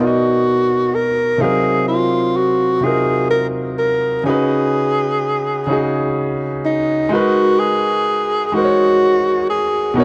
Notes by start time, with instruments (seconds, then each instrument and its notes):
Already playing: grand piano B2 B3 D#4 C#5
0.00 tenor saxophone F#4, grand piano A#4 D5
0.07 grand piano D#5
0.95 tenor saxophone A#4
1.38 grand piano C3 C4 D#4 F5, tenor saxophone G#4
1.43 grand piano F#3 A#4
1.88 tenor saxophone F4
2.36 tenor saxophone F#4
2.81 grand piano C3 C4 D#4 F4, tenor saxophone G#4
2.85 grand piano F#4 A#4
3.30 tenor saxophone A#4
3.79 tenor saxophone A#4
4.24 grand piano C#3 C#4 D#4, tenor saxophone G#4
4.28 grand piano F#4 B4
5.67 grand piano C#3 C#4 D#4
5.71 grand piano F#4 G#4
6.65 tenor saxophone D#4
7.09 grand piano G#3 D#4 F#4
7.13 tenor saxophone F#4, grand piano A#4 B4
7.59 tenor saxophone G#4
8.46 tenor saxophone G#4
8.52 grand piano G#3 D#4 F#4, tenor saxophone F#4
8.57 grand piano A#4 C5
8.64 grand piano C#5
9.49 tenor saxophone G#4
9.94 grand piano B2 B3 D#4, tenor saxophone F#4
9.98 grand piano A#4 C#5